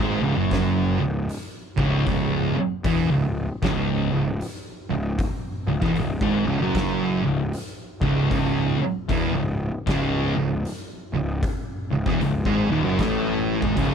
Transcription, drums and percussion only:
0.51 kick loud
0.51 snare loud
0.51 open hi-hat medium
1.29 open hi-hat medium
1.78 kick loud
2.07 kick medium
2.07 open hi-hat soft
2.84 kick loud
2.84 open hi-hat medium
3.63 kick loud
3.63 snare loud
3.63 open hi-hat medium
4.41 open hi-hat medium
5.19 kick loud
5.19 open hi-hat medium
5.82 kick loud
5.82 snare soft
5.96 open hi-hat medium
6.21 kick loud
6.75 kick loud
6.75 snare loud
6.75 open hi-hat medium
7.53 open hi-hat medium
8.02 kick loud
8.31 kick loud
8.31 open hi-hat soft
9.09 kick loud
9.09 open hi-hat medium
9.87 kick loud
9.87 snare loud
9.87 open hi-hat soft
10.65 open hi-hat soft
11.43 kick loud
11.43 open hi-hat medium
12.06 kick loud
12.06 snare soft
12.21 open hi-hat medium
12.45 kick loud
12.99 kick loud
12.99 snare loud
12.99 open hi-hat medium
13.62 kick medium
13.77 kick loud
13.77 open hi-hat medium

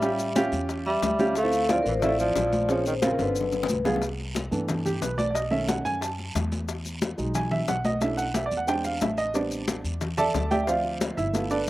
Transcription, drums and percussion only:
0.02 high bongo medium
0.02 high conga soft
0.02 long guiro medium
0.02 maracas medium
0.19 high bongo soft
0.19 high conga soft
0.19 maracas medium
0.35 high bongo medium
0.35 high conga loud
0.35 short guiro medium
0.35 maracas medium
0.52 high bongo soft
0.52 high conga soft
0.52 short guiro medium
0.52 maracas soft
0.69 high bongo medium
0.69 high conga soft
0.69 long guiro medium
0.69 maracas medium
0.85 high bongo soft
0.85 high conga soft
1.02 high bongo medium
1.02 low bongo medium
1.02 high conga medium
1.02 short guiro medium
1.02 maracas medium
1.19 high conga medium
1.19 short guiro medium
1.19 maracas soft
1.35 high bongo medium
1.35 high conga soft
1.35 long guiro medium
1.35 maracas medium
1.52 high conga soft
1.52 maracas medium
1.69 high bongo medium
1.69 high conga loud
1.69 short guiro medium
1.69 maracas medium
1.86 high conga soft
1.86 short guiro medium
1.86 maracas soft
2.02 high bongo medium
2.02 high conga soft
2.02 low conga medium
2.02 long guiro medium
2.02 maracas medium
2.19 high conga soft
2.19 maracas medium
2.36 high bongo medium
2.36 low bongo medium
2.36 high conga soft
2.36 short guiro medium
2.36 maracas medium
2.53 high conga medium
2.53 short guiro medium
2.53 maracas soft
2.69 high bongo medium
2.69 high conga soft
2.69 long guiro medium
2.69 maracas medium
2.86 high bongo soft
2.86 high conga soft
2.86 maracas medium
3.02 high bongo medium
3.02 high conga loud
3.02 short guiro medium
3.02 maracas medium
3.19 high bongo medium
3.19 high conga soft
3.19 short guiro medium
3.19 maracas soft
3.36 high conga soft
3.36 long guiro medium
3.36 maracas medium
3.41 low bongo medium
3.52 low bongo medium
3.52 high conga soft
3.52 maracas medium
3.63 low bongo loud
3.69 high conga medium
3.69 short guiro medium
3.69 maracas medium
3.85 low bongo medium
3.85 high conga medium
3.85 short guiro medium
3.85 maracas soft
3.96 low bongo medium
4.02 high bongo medium
4.02 high conga soft
4.02 long guiro medium
4.02 maracas medium
4.20 high conga soft
4.35 high bongo medium
4.35 high conga medium
4.35 short guiro medium
4.35 maracas medium
4.52 high conga soft
4.52 short guiro medium
4.52 maracas soft
4.69 high bongo medium
4.69 high conga soft
4.69 low conga medium
4.69 long guiro medium
4.69 maracas medium
4.86 high conga soft
4.86 low conga medium
4.86 maracas medium
5.02 high bongo medium
5.02 low bongo medium
5.02 high conga soft
5.02 short guiro medium
5.02 maracas medium
5.19 high conga medium
5.19 short guiro medium
5.19 maracas soft
5.35 high bongo medium
5.35 high conga soft
5.35 long guiro medium
5.35 maracas medium
5.52 high bongo soft
5.52 high conga soft
5.68 high bongo medium
5.68 high conga loud
5.68 short guiro medium
5.68 maracas medium
5.85 high bongo soft
5.85 high conga soft
5.85 short guiro medium
5.85 maracas soft
6.02 high bongo medium
6.02 high conga soft
6.02 long guiro medium
6.02 maracas medium
6.19 high bongo soft
6.19 high conga soft
6.35 high bongo medium
6.35 low bongo medium
6.35 high conga medium
6.35 short guiro medium
6.35 maracas medium
6.52 high conga medium
6.52 short guiro medium
6.52 maracas soft
6.68 high bongo medium
6.68 high conga soft
6.68 long guiro medium
6.68 maracas medium
6.85 high conga soft
6.85 maracas medium
7.02 high bongo medium
7.02 high conga loud
7.02 short guiro medium
7.02 maracas medium
7.18 high conga soft
7.18 short guiro medium
7.18 maracas soft
7.35 high bongo medium
7.35 high conga soft
7.35 low conga medium
7.35 long guiro medium
7.35 maracas medium
7.51 high conga soft
7.51 low conga medium
7.68 high bongo medium
7.68 low bongo medium
7.68 high conga soft
7.68 short guiro medium
7.68 maracas medium
7.85 high conga medium
7.85 short guiro medium
7.85 maracas soft
8.01 high bongo medium
8.01 high conga soft
8.01 long guiro medium
8.01 maracas medium
8.18 high bongo soft
8.18 high conga soft
8.18 maracas medium
8.34 high bongo medium
8.34 high conga loud
8.34 short guiro medium
8.34 maracas medium
8.51 high bongo soft
8.51 high conga soft
8.51 short guiro medium
8.51 maracas soft
8.68 high bongo medium
8.68 high conga soft
8.68 long guiro medium
8.68 maracas medium
8.84 high bongo soft
8.84 high conga soft
8.84 maracas medium
9.01 high bongo medium
9.01 low bongo medium
9.01 high conga medium
9.01 short guiro medium
9.01 maracas medium
9.18 short guiro medium
9.18 maracas soft
9.34 high bongo medium
9.34 high conga soft
9.34 long guiro medium
9.34 maracas medium
9.51 high conga soft
9.51 maracas medium
9.68 high bongo medium
9.68 high conga loud
9.68 short guiro medium
9.68 maracas medium
9.85 high conga soft
9.85 short guiro medium
9.85 maracas soft
10.01 high bongo medium
10.01 high conga soft
10.01 low conga medium
10.01 long guiro medium
10.01 maracas medium
10.18 high conga soft
10.18 low conga medium
10.18 maracas medium
10.34 high bongo medium
10.34 low bongo medium
10.34 high conga soft
10.34 short guiro medium
10.34 maracas medium
10.51 high conga medium
10.51 short guiro medium
10.51 maracas soft
10.67 high bongo medium
10.67 high conga soft
10.67 long guiro medium
10.67 maracas medium
10.84 high bongo soft
10.84 high conga soft
11.01 high bongo medium
11.01 high conga loud
11.01 short guiro medium
11.01 maracas medium
11.18 high bongo soft
11.18 high conga soft
11.18 short guiro medium
11.18 maracas soft
11.34 high bongo medium
11.34 high conga soft
11.34 long guiro medium
11.34 maracas medium
11.50 high bongo soft
11.50 high conga soft
11.50 maracas medium

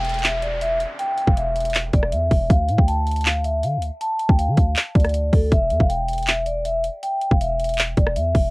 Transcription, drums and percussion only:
0.05 closed hi-hat medium
0.09 closed hi-hat medium
0.14 closed hi-hat medium
0.19 closed hi-hat medium
0.24 clap loud
0.24 closed hi-hat medium
0.42 closed hi-hat medium
0.61 closed hi-hat medium
0.80 closed hi-hat medium
0.99 closed hi-hat medium
1.18 closed hi-hat medium
1.27 kick loud
1.37 closed hi-hat medium
1.56 closed hi-hat medium
1.60 closed hi-hat medium
1.65 closed hi-hat medium
1.70 closed hi-hat medium
1.74 clap loud
1.74 closed hi-hat medium
1.93 kick loud
1.93 closed hi-hat medium
2.03 cross-stick medium
2.12 closed hi-hat loud
2.31 kick medium
2.31 open hi-hat medium
2.50 kick loud
2.50 closed hi-hat medium
2.69 closed hi-hat medium
2.78 kick loud
2.88 closed hi-hat medium
3.07 closed hi-hat medium
3.11 closed hi-hat medium
3.16 closed hi-hat medium
3.21 closed hi-hat medium
3.25 clap loud
3.25 closed hi-hat medium
3.44 closed hi-hat medium
3.63 closed hi-hat medium
3.82 closed hi-hat medium
4.01 closed hi-hat medium
4.19 closed hi-hat medium
4.29 kick loud
4.39 closed hi-hat medium
4.57 kick medium
4.57 closed hi-hat medium
4.76 clap loud
4.76 closed hi-hat medium
4.95 kick loud
4.95 closed hi-hat medium
5.00 closed hi-hat medium
5.05 cross-stick medium
5.05 closed hi-hat medium
5.09 closed hi-hat medium
5.14 closed hi-hat medium
5.33 kick medium
5.33 open hi-hat medium
5.52 kick loud
5.52 closed hi-hat medium
5.70 closed hi-hat medium
5.80 kick loud
5.90 closed hi-hat medium
6.08 closed hi-hat medium
6.13 closed hi-hat medium
6.18 closed hi-hat medium
6.23 closed hi-hat medium
6.27 clap loud
6.27 closed hi-hat medium
6.46 closed hi-hat medium
6.65 closed hi-hat loud
6.84 closed hi-hat medium
7.03 closed hi-hat medium
7.21 closed hi-hat medium
7.31 kick loud
7.41 closed hi-hat medium
7.59 closed hi-hat medium
7.64 closed hi-hat medium
7.69 closed hi-hat medium
7.74 closed hi-hat medium
7.78 clap loud
7.78 closed hi-hat medium
7.97 kick loud
7.97 closed hi-hat medium
8.07 cross-stick loud
8.16 closed hi-hat medium
8.35 kick medium
8.35 open hi-hat medium

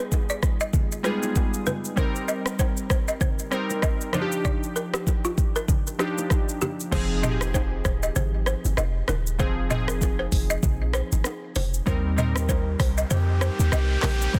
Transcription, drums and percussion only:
0.00 high bongo medium
0.12 kick medium
0.12 high bongo medium
0.12 shaker medium
0.29 shaker medium
0.43 kick medium
0.43 cross-stick medium
0.43 low bongo soft
0.43 shaker medium
0.60 shaker medium
0.73 kick loud
0.73 low conga medium
0.73 shaker medium
0.92 shaker medium
1.04 cross-stick medium
1.04 shaker soft
1.23 low bongo medium
1.23 shaker soft
1.36 kick loud
1.36 high bongo medium
1.36 shaker medium
1.54 shaker medium
1.66 high bongo medium
1.66 low bongo medium
1.66 low conga medium
1.66 shaker soft
1.85 shaker soft
1.97 kick medium
1.97 low conga medium
1.97 shaker medium
2.16 shaker soft
2.28 shaker medium
2.46 cross-stick loud
2.46 high bongo medium
2.46 shaker medium
2.59 kick medium
2.59 high bongo medium
2.59 shaker medium
2.77 shaker medium
2.90 kick medium
2.90 cross-stick medium
2.90 low bongo medium
2.90 shaker medium
3.08 shaker soft
3.21 kick loud
3.21 low conga medium
3.21 shaker medium
3.39 shaker medium
3.52 cross-stick medium
3.52 shaker soft
3.70 low bongo medium
3.70 shaker medium
3.82 kick medium
3.82 cross-stick medium
3.82 high bongo medium
3.82 shaker medium
4.01 shaker medium
4.13 cross-stick medium
4.13 high bongo medium
4.13 low bongo medium
4.13 low conga medium
4.13 shaker soft
4.32 shaker soft
4.45 kick medium
4.45 low conga medium
4.45 shaker medium
4.63 shaker soft
4.76 shaker medium
4.94 cross-stick loud
4.94 high bongo medium
4.94 shaker medium
5.07 kick medium
5.07 high bongo medium
5.07 low bongo medium
5.07 shaker medium
5.25 shaker medium
5.38 kick medium
5.38 low bongo medium
5.38 shaker medium
5.56 shaker medium
5.68 kick loud
5.68 low conga medium
5.68 shaker medium
5.87 shaker medium
5.99 cross-stick medium
5.99 shaker soft
6.18 low bongo medium
6.18 shaker medium
6.30 kick medium
6.30 cross-stick medium
6.30 high bongo medium
6.30 shaker medium
6.49 shaker medium
6.61 high bongo medium
6.61 low bongo medium
6.61 low conga medium
6.61 shaker soft
6.80 shaker soft
6.92 kick loud
6.92 crash medium
6.92 low conga medium
6.92 shaker medium
7.24 mid tom medium
7.24 shaker medium
7.41 cross-stick loud
7.41 high bongo medium
7.41 shaker medium
7.54 kick medium
7.54 high bongo medium
7.54 low bongo medium
7.54 shaker medium
7.85 kick loud
7.85 cross-stick medium
7.85 shaker medium
8.03 shaker medium
8.16 low conga medium
8.16 shaker medium
8.46 cross-stick medium
8.46 shaker medium
8.65 low bongo medium
8.65 shaker medium
8.77 cross-stick medium
8.77 high bongo medium
8.77 shaker medium
9.08 cross-stick medium
9.08 high bongo medium
9.08 low bongo medium
9.08 low conga medium
9.08 shaker soft
9.27 shaker medium
9.40 kick loud
9.40 low conga medium
9.40 shaker medium
9.71 mid tom medium
9.71 shaker medium
9.88 cross-stick loud
9.88 high bongo medium
9.88 shaker medium
10.01 kick medium
10.01 high bongo medium
10.01 low bongo medium
10.01 shaker medium
10.32 kick medium
10.32 open hi-hat medium
10.32 shaker medium
10.50 shaker medium
10.63 kick loud
10.63 low conga medium
10.63 shaker medium
10.94 cross-stick loud
10.94 shaker soft
11.12 low bongo medium
11.12 shaker medium
11.24 cross-stick medium
11.24 high bongo medium
11.24 shaker medium
11.56 open hi-hat medium
11.56 high bongo medium
11.56 low bongo medium
11.56 low conga medium
11.56 shaker soft
11.74 shaker medium
11.87 kick loud
11.87 low conga medium
11.87 shaker medium
12.18 mid tom loud
12.18 shaker medium
12.36 cross-stick loud
12.36 high bongo medium
12.36 shaker medium
12.49 kick medium
12.49 high bongo medium
12.49 low bongo medium
12.49 shaker medium
12.80 kick medium
12.80 cross-stick medium
12.80 open hi-hat medium
12.80 shaker medium
12.98 shaker medium
13.10 low conga medium
13.10 shaker medium
13.41 cross-stick medium
13.41 shaker medium
13.60 low bongo medium
13.60 shaker medium
13.72 cross-stick medium
13.72 high bongo medium
13.72 shaker medium
14.03 cross-stick medium
14.03 clap loud
14.03 open hi-hat medium
14.03 high bongo medium
14.03 low bongo medium
14.03 low conga medium
14.03 shaker medium
14.22 shaker medium
14.34 kick loud
14.34 low conga medium
14.34 shaker medium

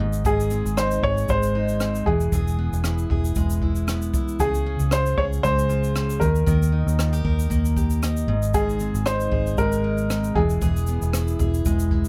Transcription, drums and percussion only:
0.13 shaker soft
0.25 kick loud
0.25 shaker medium
0.40 shaker soft
0.50 shaker soft
0.66 shaker medium
0.77 cross-stick medium
0.77 shaker medium
0.91 shaker soft
1.03 kick medium
1.18 shaker soft
1.28 kick medium
1.28 shaker medium
1.43 shaker medium
1.68 shaker soft
1.80 cross-stick medium
1.80 shaker medium
1.95 shaker soft
2.06 kick medium
2.20 shaker soft
2.32 kick loud
2.32 shaker medium
2.48 shaker soft
2.73 shaker soft
2.84 cross-stick medium
2.84 shaker medium
2.98 shaker soft
3.10 kick medium
3.25 shaker soft
3.35 kick medium
3.35 shaker medium
3.50 shaker medium
3.62 kick medium
3.75 shaker soft
3.88 cross-stick medium
3.88 shaker medium
4.02 shaker soft
4.14 kick medium
4.14 shaker medium
4.28 shaker soft
4.40 kick loud
4.40 shaker medium
4.54 shaker soft
4.80 shaker soft
4.91 cross-stick medium
4.91 shaker medium
5.06 shaker soft
5.18 kick medium
5.33 shaker soft
5.44 kick medium
5.44 shaker medium
5.59 shaker medium
5.70 shaker soft
5.84 shaker soft
5.96 cross-stick medium
5.96 shaker medium
6.10 shaker soft
6.21 kick medium
6.21 shaker medium
6.35 shaker soft
6.47 kick loud
6.47 shaker medium
6.62 shaker soft
6.88 shaker medium
6.99 cross-stick medium
6.99 shaker medium
7.13 shaker soft
7.25 kick medium
7.39 shaker soft
7.51 kick medium
7.51 shaker medium
7.65 shaker medium
7.77 kick medium
7.77 shaker soft
7.90 shaker soft
8.03 cross-stick medium
8.03 shaker medium
8.17 shaker soft
8.42 shaker soft
8.54 kick loud
8.54 shaker medium
8.69 shaker soft
8.79 shaker soft
8.95 shaker soft
9.06 cross-stick medium
9.06 shaker medium
9.20 shaker soft
9.32 kick medium
9.47 shaker soft
9.58 kick medium
9.58 shaker medium
9.72 shaker medium
9.98 shaker soft
10.10 cross-stick medium
10.10 shaker medium
10.24 shaker soft
10.35 kick loud
10.49 shaker soft
10.62 kick loud
10.62 shaker medium
10.77 shaker soft
10.87 shaker medium
11.02 shaker medium
11.13 cross-stick medium
11.13 shaker medium
11.28 shaker soft
11.39 kick medium
11.39 shaker soft
11.54 shaker soft
11.65 kick medium
11.65 shaker medium
11.79 shaker medium
11.91 kick medium
12.05 shaker soft

